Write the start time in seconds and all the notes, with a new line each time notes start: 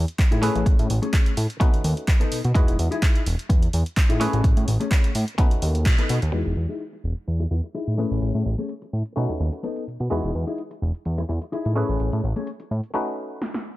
Already playing: E3 G#3 B4 D#5
0.08 closed hi-hat
0.19 kick, clap, closed hi-hat
0.31 A2 D#4 E4 G#4, closed hi-hat
0.42 A3 C#4 E4 G#4 B4, open hi-hat
0.56 A1, closed hi-hat
0.66 A1, kick, closed hi-hat
0.79 A2, closed hi-hat
0.90 A1, open hi-hat
1.02 A3 C#4 G#4, closed hi-hat
1.13 kick, clap, closed hi-hat
1.26 closed hi-hat
1.37 A2, open hi-hat
1.50 closed hi-hat
1.60 B2 A3 C#4 D#4 F#4 B4, muted clean electric guitar stroke, kick, closed hi-hat
1.73 D#2, muted clean electric guitar stroke, closed hi-hat
1.84 D#2, open hi-hat
1.97 closed hi-hat
2.08 kick, clap, closed hi-hat
2.20 B3 D#4 A4, closed hi-hat
2.32 B2, open hi-hat
2.44 B2, closed hi-hat
2.54 E2 E3 G#3 D#4 E4 F#4 G#4 B4 D#5, kick, closed hi-hat
2.68 E1, closed hi-hat
2.79 E2, open hi-hat
2.91 D#4 E4 G#4, closed hi-hat
3.02 kick, clap, closed hi-hat
3.16 closed hi-hat
3.26 E1, open hi-hat
3.39 closed hi-hat
3.49 E2, muted clean electric guitar stroke, kick, closed hi-hat
3.62 muted clean electric guitar stroke, closed hi-hat
3.73 E2, open hi-hat
3.86 closed hi-hat
3.97 kick, clap, closed hi-hat
4.09 A2 D#4 E4 G#4, closed hi-hat
4.20 A3 C#4 E4 G#4 B4, open hi-hat
4.33 A1, closed hi-hat
4.44 A1, kick, closed hi-hat
4.57 A2, closed hi-hat
4.68 A1, open hi-hat
4.80 A3 C#4 G#4, closed hi-hat
4.91 kick, clap, closed hi-hat
5.04 closed hi-hat
5.15 A2, open hi-hat
5.28 closed hi-hat
5.38 B2 A3 C#4 D#4 F#4 B4, muted clean electric guitar stroke, kick, closed hi-hat
5.51 D#2, muted clean electric guitar stroke, closed hi-hat
5.62 D#2, open hi-hat
5.75 closed hi-hat
5.86 B2, kick, clap, closed hi-hat
5.98 B3 D#4 A4, closed hi-hat
6.09 B2, open hi-hat
6.22 D#2, closed hi-hat
6.32 E2 E3 G#3 D#4 E4 F#4 G#4 B4 D#5
6.46 E1, closed hi-hat
6.57 E2
6.69 D#4 E4 G#4, closed hi-hat
6.80 closed hi-hat, cabasa
6.93 muted clean electric guitar stroke, closed hi-hat, cabasa
7.04 E1, cabasa
7.17 closed hi-hat, cabasa
7.28 E2, closed hi-hat, cabasa
7.40 muted clean electric guitar stroke, closed hi-hat, cabasa
7.51 E2, muted clean electric guitar stroke, cabasa
7.64 muted clean electric guitar stroke, closed hi-hat, cabasa
7.75 D#4 E4 G#4, closed hi-hat, cabasa
7.88 A2, closed hi-hat, cabasa
7.98 A3 C#4 E4 G#4 B4, cabasa
8.11 A1, closed hi-hat, cabasa
8.22 A1, closed hi-hat, cabasa
8.35 A2, closed hi-hat, cabasa
8.46 A1, cabasa
8.58 A3 C#4 G#4, closed hi-hat, cabasa
8.69 closed hi-hat, cabasa
8.82 muted clean electric guitar stroke, closed hi-hat, cabasa
8.93 A2, cabasa
9.06 closed hi-hat, cabasa
9.16 B2 A3 C#4 D#4 F#4 B4, closed hi-hat, cabasa
9.29 D#2, muted clean electric guitar stroke, closed hi-hat, cabasa
9.40 D#2, muted clean electric guitar stroke, cabasa
9.53 muted clean electric guitar stroke, closed hi-hat, cabasa
9.64 B3 D#4 A4, closed hi-hat, cabasa
9.76 closed hi-hat, cabasa
9.88 B2, cabasa
10.00 B2, muted clean electric guitar stroke, closed hi-hat, cabasa
10.10 E2 E3 G#3 D#4 E4 F#4 G#4 B4 D#5, closed hi-hat, cabasa
10.24 E1, closed hi-hat, cabasa
10.35 E2, cabasa
10.47 D#4 E4 G#4, closed hi-hat, cabasa
10.58 closed hi-hat, cabasa
10.71 muted clean electric guitar stroke, closed hi-hat, cabasa
10.82 E1, cabasa
10.94 closed hi-hat, cabasa
11.05 E2, closed hi-hat, cabasa
11.18 muted clean electric guitar stroke, closed hi-hat, cabasa
11.29 E2, muted clean electric guitar stroke, cabasa
11.41 muted clean electric guitar stroke, closed hi-hat, cabasa
11.52 D#4 E4 G#4, closed hi-hat, cabasa
11.65 A2, closed hi-hat, cabasa
11.76 A3 C#4 E4 G#4 B4, cabasa
11.89 A1, closed hi-hat, cabasa
12.00 A1, closed hi-hat, cabasa
12.13 A2, closed hi-hat, cabasa
12.24 A1, cabasa
12.36 A3 C#4 G#4, closed hi-hat, cabasa
12.47 closed hi-hat, cabasa
12.60 muted clean electric guitar stroke, closed hi-hat, cabasa
12.71 A2, cabasa
12.84 closed hi-hat, cabasa
12.94 A3 C#4 D#4 F#4 B4
13.42 snare
13.54 snare